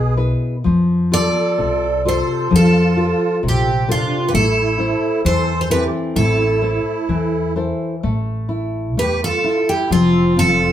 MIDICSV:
0, 0, Header, 1, 5, 480
1, 0, Start_track
1, 0, Key_signature, 0, "minor"
1, 0, Tempo, 937500
1, 334, Time_signature, 2, 2, 24, 8
1, 1288, Tempo, 907716
1, 3208, Tempo, 936037
1, 5555, End_track
2, 0, Start_track
2, 0, Title_t, "Twelve-string acoustic guitar"
2, 0, Program_c, 0, 25
2, 0, Note_on_c, 0, 71, 85
2, 74, Note_off_c, 0, 71, 0
2, 581, Note_on_c, 0, 74, 90
2, 1065, Note_off_c, 0, 74, 0
2, 1068, Note_on_c, 0, 72, 76
2, 1304, Note_off_c, 0, 72, 0
2, 1310, Note_on_c, 0, 69, 84
2, 1760, Note_off_c, 0, 69, 0
2, 1800, Note_on_c, 0, 67, 67
2, 2009, Note_off_c, 0, 67, 0
2, 2028, Note_on_c, 0, 65, 78
2, 2223, Note_on_c, 0, 71, 55
2, 2229, Note_off_c, 0, 65, 0
2, 2254, Note_off_c, 0, 71, 0
2, 2256, Note_on_c, 0, 69, 84
2, 2711, Note_off_c, 0, 69, 0
2, 2740, Note_on_c, 0, 72, 83
2, 2918, Note_off_c, 0, 72, 0
2, 2924, Note_on_c, 0, 72, 64
2, 2964, Note_off_c, 0, 72, 0
2, 2979, Note_on_c, 0, 71, 85
2, 3042, Note_off_c, 0, 71, 0
2, 3216, Note_on_c, 0, 69, 81
2, 3917, Note_off_c, 0, 69, 0
2, 4666, Note_on_c, 0, 71, 75
2, 4774, Note_off_c, 0, 71, 0
2, 4795, Note_on_c, 0, 69, 76
2, 5025, Note_on_c, 0, 67, 64
2, 5033, Note_off_c, 0, 69, 0
2, 5143, Note_off_c, 0, 67, 0
2, 5145, Note_on_c, 0, 65, 78
2, 5384, Note_off_c, 0, 65, 0
2, 5384, Note_on_c, 0, 69, 86
2, 5555, Note_off_c, 0, 69, 0
2, 5555, End_track
3, 0, Start_track
3, 0, Title_t, "Accordion"
3, 0, Program_c, 1, 21
3, 0, Note_on_c, 1, 68, 86
3, 73, Note_off_c, 1, 68, 0
3, 578, Note_on_c, 1, 69, 78
3, 1034, Note_off_c, 1, 69, 0
3, 1057, Note_on_c, 1, 69, 67
3, 1275, Note_off_c, 1, 69, 0
3, 1292, Note_on_c, 1, 65, 85
3, 1751, Note_off_c, 1, 65, 0
3, 1777, Note_on_c, 1, 60, 70
3, 1996, Note_off_c, 1, 60, 0
3, 2022, Note_on_c, 1, 62, 62
3, 2206, Note_off_c, 1, 62, 0
3, 2214, Note_on_c, 1, 67, 58
3, 2247, Note_off_c, 1, 67, 0
3, 2262, Note_on_c, 1, 64, 84
3, 2713, Note_off_c, 1, 64, 0
3, 2744, Note_on_c, 1, 69, 76
3, 2926, Note_off_c, 1, 69, 0
3, 2936, Note_on_c, 1, 69, 50
3, 2968, Note_off_c, 1, 69, 0
3, 2980, Note_on_c, 1, 67, 71
3, 3086, Note_off_c, 1, 67, 0
3, 3219, Note_on_c, 1, 64, 76
3, 3918, Note_off_c, 1, 64, 0
3, 4662, Note_on_c, 1, 67, 72
3, 4772, Note_off_c, 1, 67, 0
3, 4782, Note_on_c, 1, 65, 63
3, 5003, Note_off_c, 1, 65, 0
3, 5011, Note_on_c, 1, 64, 59
3, 5125, Note_off_c, 1, 64, 0
3, 5131, Note_on_c, 1, 60, 76
3, 5353, Note_off_c, 1, 60, 0
3, 5364, Note_on_c, 1, 65, 73
3, 5555, Note_off_c, 1, 65, 0
3, 5555, End_track
4, 0, Start_track
4, 0, Title_t, "Nylon-string guitar"
4, 0, Program_c, 2, 24
4, 0, Note_on_c, 2, 47, 53
4, 85, Note_on_c, 2, 64, 46
4, 88, Note_on_c, 2, 68, 44
4, 89, Note_on_c, 2, 71, 54
4, 283, Note_off_c, 2, 64, 0
4, 283, Note_off_c, 2, 68, 0
4, 283, Note_off_c, 2, 71, 0
4, 315, Note_off_c, 2, 47, 0
4, 329, Note_on_c, 2, 53, 61
4, 572, Note_on_c, 2, 65, 46
4, 573, Note_on_c, 2, 67, 39
4, 578, Note_on_c, 2, 69, 47
4, 798, Note_off_c, 2, 53, 0
4, 811, Note_on_c, 2, 48, 49
4, 955, Note_off_c, 2, 65, 0
4, 957, Note_off_c, 2, 67, 0
4, 958, Note_off_c, 2, 69, 0
4, 1051, Note_on_c, 2, 65, 49
4, 1052, Note_on_c, 2, 67, 40
4, 1056, Note_on_c, 2, 69, 54
4, 1273, Note_off_c, 2, 48, 0
4, 1283, Note_on_c, 2, 53, 66
4, 1433, Note_off_c, 2, 67, 0
4, 1434, Note_off_c, 2, 65, 0
4, 1434, Note_off_c, 2, 69, 0
4, 1527, Note_on_c, 2, 65, 43
4, 1531, Note_on_c, 2, 67, 41
4, 1532, Note_on_c, 2, 69, 50
4, 1753, Note_off_c, 2, 53, 0
4, 1771, Note_on_c, 2, 48, 59
4, 1912, Note_off_c, 2, 65, 0
4, 1913, Note_off_c, 2, 67, 0
4, 1915, Note_off_c, 2, 69, 0
4, 2012, Note_on_c, 2, 65, 48
4, 2014, Note_on_c, 2, 69, 58
4, 2015, Note_on_c, 2, 67, 47
4, 2203, Note_off_c, 2, 65, 0
4, 2204, Note_off_c, 2, 67, 0
4, 2204, Note_off_c, 2, 69, 0
4, 2235, Note_off_c, 2, 48, 0
4, 2250, Note_on_c, 2, 57, 66
4, 2487, Note_on_c, 2, 64, 50
4, 2492, Note_on_c, 2, 69, 48
4, 2494, Note_on_c, 2, 72, 50
4, 2715, Note_off_c, 2, 57, 0
4, 2732, Note_on_c, 2, 52, 61
4, 2871, Note_off_c, 2, 64, 0
4, 2875, Note_off_c, 2, 69, 0
4, 2875, Note_off_c, 2, 72, 0
4, 2973, Note_on_c, 2, 64, 56
4, 2978, Note_on_c, 2, 60, 60
4, 2978, Note_on_c, 2, 69, 49
4, 3196, Note_off_c, 2, 52, 0
4, 3214, Note_on_c, 2, 57, 70
4, 3355, Note_off_c, 2, 64, 0
4, 3357, Note_off_c, 2, 60, 0
4, 3358, Note_off_c, 2, 69, 0
4, 3449, Note_on_c, 2, 69, 42
4, 3451, Note_on_c, 2, 64, 46
4, 3451, Note_on_c, 2, 72, 47
4, 3677, Note_off_c, 2, 57, 0
4, 3692, Note_on_c, 2, 52, 55
4, 3838, Note_off_c, 2, 64, 0
4, 3838, Note_off_c, 2, 69, 0
4, 3839, Note_off_c, 2, 72, 0
4, 3932, Note_on_c, 2, 64, 42
4, 3934, Note_on_c, 2, 69, 42
4, 3937, Note_on_c, 2, 72, 50
4, 4127, Note_off_c, 2, 64, 0
4, 4128, Note_off_c, 2, 69, 0
4, 4130, Note_off_c, 2, 72, 0
4, 4164, Note_off_c, 2, 52, 0
4, 4175, Note_on_c, 2, 57, 66
4, 4409, Note_on_c, 2, 64, 50
4, 4647, Note_off_c, 2, 64, 0
4, 4651, Note_off_c, 2, 57, 0
4, 4657, Note_on_c, 2, 57, 49
4, 4890, Note_off_c, 2, 57, 0
4, 4898, Note_on_c, 2, 64, 61
4, 5129, Note_off_c, 2, 64, 0
4, 5138, Note_on_c, 2, 53, 70
4, 5372, Note_on_c, 2, 60, 54
4, 5555, Note_off_c, 2, 53, 0
4, 5555, Note_off_c, 2, 60, 0
4, 5555, End_track
5, 0, Start_track
5, 0, Title_t, "Upright bass"
5, 0, Program_c, 3, 32
5, 0, Note_on_c, 3, 35, 75
5, 163, Note_off_c, 3, 35, 0
5, 337, Note_on_c, 3, 41, 89
5, 649, Note_off_c, 3, 41, 0
5, 818, Note_on_c, 3, 36, 74
5, 1125, Note_off_c, 3, 36, 0
5, 1291, Note_on_c, 3, 41, 91
5, 1604, Note_off_c, 3, 41, 0
5, 1775, Note_on_c, 3, 34, 71
5, 2085, Note_off_c, 3, 34, 0
5, 2250, Note_on_c, 3, 33, 94
5, 2561, Note_off_c, 3, 33, 0
5, 2733, Note_on_c, 3, 40, 88
5, 3044, Note_off_c, 3, 40, 0
5, 3214, Note_on_c, 3, 33, 101
5, 3524, Note_off_c, 3, 33, 0
5, 3690, Note_on_c, 3, 40, 73
5, 4007, Note_off_c, 3, 40, 0
5, 4177, Note_on_c, 3, 33, 82
5, 4662, Note_off_c, 3, 33, 0
5, 4662, Note_on_c, 3, 40, 83
5, 4817, Note_off_c, 3, 40, 0
5, 5135, Note_on_c, 3, 29, 98
5, 5555, Note_off_c, 3, 29, 0
5, 5555, End_track
0, 0, End_of_file